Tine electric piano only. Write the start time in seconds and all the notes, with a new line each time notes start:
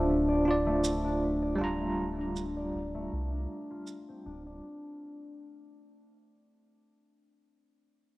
Already playing: D4 F4 C5
0.45 D4 F4
0.51 D5
1.55 G3 D4
1.61 F4 A#5